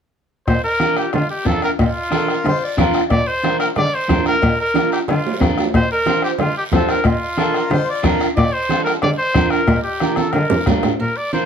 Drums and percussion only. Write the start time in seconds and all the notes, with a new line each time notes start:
0.48 bombo low, bombo rim, cowbell, high conga, long guiro
0.80 bombo rim, cowbell, high conga, short guiro
0.96 bombo rim, short guiro
1.13 bombo rim, cowbell, high conga, low conga, long guiro
1.46 bombo low, bombo rim, cowbell, high conga, short guiro
1.62 bombo rim, short guiro
1.79 bombo low, bombo rim, cowbell, high conga, long guiro
2.12 bombo rim, cowbell, high conga, short guiro
2.28 bombo rim, short guiro
2.45 bombo rim, cowbell, high conga, low conga, long guiro
2.78 bombo low, bombo rim, cowbell, high conga, low conga, short guiro
2.94 bombo rim, short guiro
3.10 bombo low, bombo rim, cowbell, high conga, long guiro
3.43 bombo rim, cowbell, high conga, short guiro
3.60 bombo rim, short guiro
3.76 bombo rim, cowbell, high conga, low conga, long guiro
4.09 bombo low, bombo rim, cowbell, high conga, low timbale, short guiro
4.26 bombo rim, short guiro
4.42 bombo low, bombo rim, cowbell, high conga, long guiro
4.75 bombo rim, cowbell, high conga, short guiro
4.92 bombo rim, short guiro
5.08 bombo rim, cowbell, high conga, low conga, high timbale, long guiro
5.26 low timbale
5.41 bombo low, bombo rim, cowbell, high conga, short guiro
5.58 bombo rim, low timbale, short guiro
5.73 bombo low, bombo rim, cowbell, high conga, long guiro
6.06 bombo rim, cowbell, high conga, short guiro
6.22 bombo rim, short guiro
6.38 bombo rim, cowbell, high conga, low conga, long guiro
6.72 bombo low, bombo rim, cowbell, high conga, low timbale, short guiro
6.89 bombo rim, short guiro
7.04 bombo low, bombo rim, cowbell, high conga, long guiro
7.38 bombo rim, cowbell, high conga, short guiro
7.54 bombo rim, short guiro
7.71 bombo rim, cowbell, high conga, low conga, long guiro
8.04 bombo low, bombo rim, cowbell, high conga, low conga, short guiro
8.21 bombo rim, short guiro
8.37 bombo low, bombo rim, cowbell, high conga, long guiro
8.69 bombo rim, cowbell, high conga, short guiro
8.87 bombo rim, short guiro
9.02 bombo rim, cowbell, high conga, low conga, long guiro
9.34 bombo low, bombo rim, cowbell, high conga, short guiro
9.50 bombo rim, short guiro
9.68 bombo low, bombo rim, cowbell, high conga, low conga, long guiro
10.00 bombo rim, cowbell, high conga, short guiro
10.16 bombo rim, high conga, short guiro
10.33 bombo rim, cowbell, low conga, long guiro
10.50 low conga, high timbale
10.66 bombo low, bombo rim, cowbell, low conga, low timbale, short guiro
10.83 bombo rim, low conga, low timbale, short guiro
11.00 high conga, high timbale, long guiro
11.33 high conga, high timbale, short guiro